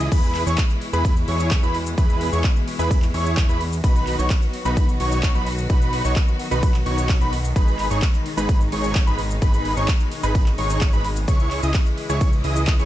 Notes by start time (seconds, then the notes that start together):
Already playing: E3 E4
0.00 open hi-hat, shaker
0.12 E2 B2 G#3 E4 G#4 B4 B5, kick, crash, ride, shaker
0.24 shaker
0.35 clap, open hi-hat
0.47 E2 E4 G#4 C#5 C#6, shaker
0.58 kick, clap, ride, shaker
0.70 shaker
0.81 open hi-hat
0.93 E2 E4 G#4 B4 B5, shaker
1.05 kick, ride, shaker
1.16 shaker
1.28 E2 E4 G#4 C#5 C#6, open hi-hat
1.40 shaker
1.51 kick, clap, ride, shaker
1.63 E2 E4 G#4 B4 B5, shaker
1.74 open hi-hat
1.86 shaker
1.98 E2 E4 G#4 B4 B5, kick, ride, shaker
2.10 shaker
2.21 open hi-hat
2.33 E2 E4 G#4 C#5 C#6, shaker
2.44 kick, clap, ride, shaker
2.56 shaker
2.68 open hi-hat
2.79 E2 E4 G#4 B4 B5, shaker
2.91 kick, ride, shaker
3.02 clap, shaker
3.14 E2 E4 G#4 C#5 C#6, open hi-hat
3.26 shaker
3.37 kick, clap, ride, shaker
3.49 E2 E4 G#4 B4 B5, shaker
3.61 open hi-hat
3.72 open hi-hat, shaker
3.84 B1 D#3 F#3 B3 D#4 F#4 B4 B5, kick, ride, shaker
3.96 shaker
4.07 clap, open hi-hat
4.19 B1 D#4 F#4 C#5 C#6, shaker
4.30 kick, clap, ride, shaker
4.42 shaker
4.53 open hi-hat
4.65 B1 D#4 F#4 B4 B5, shaker
4.77 kick, ride, shaker
4.89 shaker
5.00 B1 D#4 F#4 C#5 C#6, open hi-hat
5.12 shaker
5.23 kick, clap, ride, shaker
5.35 B1 D#4 F#4 B4 B5, shaker
5.47 open hi-hat
5.58 shaker
5.70 D#4 F#4 B4 B5, kick, ride, shaker
5.82 shaker
5.93 open hi-hat
6.05 B1 D#4 F#4 C#5 C#6, shaker
6.16 kick, clap, ride, shaker
6.28 shaker
6.40 open hi-hat
6.51 B1 D#4 F#4 B4 B5, shaker
6.63 kick, ride, shaker
6.74 clap, shaker
6.86 B1 D#4 F#4 C#5 C#6, open hi-hat
6.98 shaker
7.09 kick, clap, ride, shaker
7.21 B1 D#4 F#4 B4 B5, shaker
7.33 open hi-hat
7.44 open hi-hat, shaker
7.56 G#1 B2 G#3 D#4 G#4 B4 B5, kick, ride, shaker
7.68 shaker
7.79 clap, open hi-hat
7.91 G#1 D#4 G#4 C#5 C#6, shaker
8.02 kick, clap, ride, shaker
8.14 shaker
8.26 open hi-hat
8.37 G#1 D#4 G#4 B4 B5, shaker
8.49 kick, ride, shaker
8.61 shaker
8.72 G#1 D#4 G#4 C#5 C#6, open hi-hat
8.84 shaker
8.95 kick, clap, ride, shaker
9.07 G#1 D#4 G#4 B4 B5, shaker
9.19 open hi-hat
9.30 shaker
9.42 G#1 D#4 G#4 B4 B5, kick, ride, shaker
9.54 shaker
9.65 open hi-hat
9.77 G#1 D#4 G#4 C#5 C#6, shaker
9.88 kick, clap, ride, shaker
10.00 shaker
10.12 open hi-hat
10.23 G#1 D#4 G#4 B4 B5, shaker
10.35 kick, ride, shaker
10.46 clap, shaker
10.58 G#1 D#4 G#4 C#5 C#6, open hi-hat
10.70 shaker
10.81 kick, clap, ride, shaker
10.93 G#1 D#4 G#4 B4 B5, shaker
11.04 open hi-hat
11.16 open hi-hat, shaker
11.28 C#2 C#3 E3 E4 G#4 C#5 C#6, kick, ride, shaker
11.40 shaker
11.51 clap, open hi-hat
11.63 C#2 E4 G#4 D#5 D#6, shaker
11.74 kick, clap, ride, shaker
11.86 shaker
11.97 open hi-hat
12.09 C#2 E4 G#4 C#5 C#6, shaker
12.21 kick, ride, shaker
12.33 shaker
12.44 C#2 E4 G#4 D#5 D#6, open hi-hat
12.56 shaker
12.67 kick, clap, ride, shaker
12.79 C#2 E4 G#4 C#5 C#6, shaker